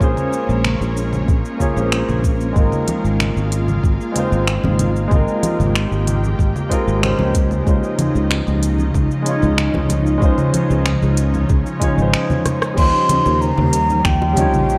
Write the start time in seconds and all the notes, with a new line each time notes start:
Already playing: G#3 A#3 C#4 G#4 C#5
0.00 A#1 C#4 F4 G#4, kick, shaker
0.04 C5
0.17 low conga, shaker
0.33 shaker
0.49 A#1, shaker
0.65 finger snap, low conga, shaker
0.81 A#1, shaker
0.97 shaker
1.13 low conga, shaker
1.28 A#1, kick, shaker
1.45 shaker
1.58 A#3 C#4 F4 G#4, kick, low conga, shaker
1.62 C#5
1.73 A#1 A#3 C#4 F4
1.77 G#4 C5, shaker
1.92 finger snap, shaker
2.09 A#1, low conga, shaker
2.24 kick, shaker
2.41 shaker
2.53 G#1 G#3 C4 D#4 F4, kick, shaker
2.58 F4 A#4
2.72 low conga, shaker
2.88 closed hi-hat, high conga, shaker
3.04 G#1, shaker
3.20 finger snap, low conga, shaker
3.36 G#1, shaker
3.52 closed hi-hat, shaker
3.68 high conga, low conga, shaker
3.84 G#1, kick, shaker
4.01 shaker
4.12 G#3 C4 D#4, closed hi-hat, low conga
4.16 F4 C5, shaker
4.32 G#1, shaker
4.47 finger snap, shaker
4.64 G#1, high conga, low conga
4.79 closed hi-hat, low conga, shaker
4.96 shaker
5.08 G#1 G#3 C4 D#4 G4, kick, low conga
5.12 F4 A#4, shaker
5.28 shaker
5.43 closed hi-hat, high conga, shaker
5.59 G#1, low conga, shaker
5.75 finger snap, shaker
5.91 G#1, shaker
6.07 closed hi-hat, low conga, shaker
6.23 high conga, shaker
6.39 G#1, kick, shaker
6.56 low conga, shaker
6.69 G#3 C4 D#4 F4 A#4, kick, closed hi-hat, shaker
6.87 G#1, shaker
7.01 G#3 C#4 D#4 F4 C5, finger snap, low conga, shaker
7.19 C#2, high conga, low conga
7.34 C#3 F3 D#4, kick, closed hi-hat, low conga, shaker
7.51 low conga, shaker
7.63 C#2 G#3 C#4 D#4, kick
7.67 F4 C5, shaker
7.83 shaker
7.99 closed hi-hat, high conga, low conga, shaker
8.15 C#2, shaker
8.31 finger snap, shaker
8.47 C#2, low conga, shaker
8.63 closed hi-hat, shaker
8.78 high conga, shaker
8.94 C#2, kick, low conga, shaker
9.11 shaker
9.22 G#3 C#4 D#4, closed hi-hat
9.27 F4 C#5, shaker
9.42 C#2, low conga, shaker
9.58 finger snap, shaker
9.74 C#2, high conga, low conga
9.89 C#4, closed hi-hat, low conga, shaker
10.06 shaker
10.18 G#3 C#4
10.22 C#2 D#4 F4 C5, kick, shaker
10.38 low conga, shaker
10.54 closed hi-hat, high conga, shaker
10.70 C#2, shaker
10.86 finger snap, low conga, shaker
11.02 C#2, shaker
11.17 closed hi-hat, shaker
11.34 high conga, low conga, shaker
11.49 C#2, kick, shaker
11.66 shaker
11.80 G#3 C#4 D#4 F4 C#5, kick, closed hi-hat, low conga, shaker
11.94 G#1 G#3 C#4 D#4
11.98 F4 C5, shaker
12.14 finger snap, shaker
12.30 high conga, low conga, shaker
12.45 cross-stick, closed hi-hat, low conga, shaker
12.62 cross-stick, shaker
12.74 D#2 F3 G3 C#4 D#4 C6, kick, crash, shaker
12.80 F4 C5
13.09 closed hi-hat, high conga, low conga, shaker
13.26 D#2, high bongo, shaker
13.35 C6
13.41 A#5, shaker
13.58 D#2, low conga
13.73 closed hi-hat, shaker
13.90 high conga, shaker
14.05 D#2 G5, finger snap, kick, low conga, shaker
14.22 high bongo
14.33 G3 C#4 D#4, closed hi-hat, low conga
14.37 F4 C#5, shaker
14.53 A#1, low conga, shaker
14.70 shaker